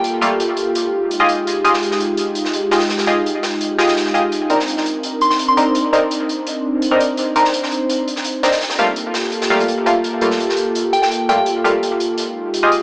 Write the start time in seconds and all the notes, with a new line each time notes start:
Already playing: A#3 F4 G4 A4
0.04 closed hi-hat
0.21 G3 A3 A#3 F4, closed hi-hat
0.40 closed hi-hat
0.57 closed hi-hat
0.75 G#3 D#4, closed hi-hat
1.11 closed hi-hat
1.20 F4 G4 G#4 D#5
1.29 closed hi-hat
1.47 closed hi-hat
1.64 F4 G4 G#4 D#5, closed hi-hat
1.74 snare
1.83 closed hi-hat
1.91 snare
2.00 closed hi-hat
2.17 closed hi-hat
2.35 closed hi-hat
2.45 snare
2.53 closed hi-hat
2.71 F4 G4 G#4 D#5, snare, closed hi-hat
2.80 snare, closed hi-hat
2.89 snare, closed hi-hat
2.98 snare, closed hi-hat
3.07 F4 G4 G#4 D#5, closed hi-hat
3.26 closed hi-hat
3.43 snare, closed hi-hat
3.61 closed hi-hat
3.78 F4 G4 G#4 D#5, snare, closed hi-hat
3.87 snare, closed hi-hat
3.96 snare, closed hi-hat
4.06 snare
4.14 F4 G4 G#4 D#5, closed hi-hat
4.32 C4 D4 A#4, closed hi-hat
4.50 C4 D4 D#4 A#4, closed hi-hat
4.60 snare
4.68 closed hi-hat
4.77 snare
4.86 closed hi-hat
5.03 closed hi-hat
5.21 C6, closed hi-hat
5.30 C6, snare
5.39 closed hi-hat
5.48 C6
5.57 C4 D4 D#4 A#4, closed hi-hat
5.75 closed hi-hat
5.93 C4 D4 D#4 A#4, closed hi-hat
6.11 closed hi-hat
6.29 closed hi-hat
6.46 C5, closed hi-hat
6.82 closed hi-hat
6.91 C4 D4 D#4 A#4
7.00 closed hi-hat
7.17 closed hi-hat
7.36 C4 D4 D#4 A#4, closed hi-hat
7.45 snare
7.54 closed hi-hat
7.63 snare
7.72 closed hi-hat
7.89 closed hi-hat
8.08 closed hi-hat
8.16 snare
8.24 closed hi-hat
8.43 C4 D4 D#4 A#4, snare, closed hi-hat
8.52 snare, closed hi-hat
8.61 A#3 F4 G4 A4, snare, closed hi-hat
8.70 snare, closed hi-hat
8.79 G3 A3 A#3 F4, closed hi-hat
8.96 closed hi-hat
9.14 snare, closed hi-hat
9.24 snare
9.32 closed hi-hat
9.42 snare, closed hi-hat
9.50 G3 A3 A#3 F4, snare
9.60 closed hi-hat
9.68 closed hi-hat
9.86 G3 A3 A#3 F4, closed hi-hat
10.04 closed hi-hat
10.21 G3 A3 A#3 F4, closed hi-hat
10.31 snare
10.40 closed hi-hat
10.50 snare
10.57 closed hi-hat
10.75 closed hi-hat
10.93 G5, closed hi-hat
11.02 G5, snare
11.12 closed hi-hat
11.29 G3 A3 A#3 F4 G5, closed hi-hat
11.38 G5
11.46 closed hi-hat
11.64 G3 A3 A#3 F4, closed hi-hat
11.83 closed hi-hat
12.00 closed hi-hat
12.18 G#3 D#4 G4, closed hi-hat
12.54 closed hi-hat
12.63 F4 G4 G#4 D#5
12.72 closed hi-hat